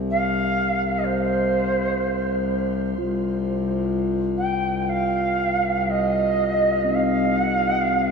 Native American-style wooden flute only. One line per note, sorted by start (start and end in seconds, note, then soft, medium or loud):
0.10 0.99 F5 medium
0.98 1.06 D#5 medium
1.04 2.73 C5 medium
4.38 4.81 G5 medium
4.81 4.90 G5 medium
4.89 5.92 F5 medium
5.90 6.96 D#5 medium
6.95 7.41 F5 medium
7.41 7.53 F#5 medium
7.53 7.66 F5 medium
7.66 7.79 F#5 medium
7.79 8.11 F5 medium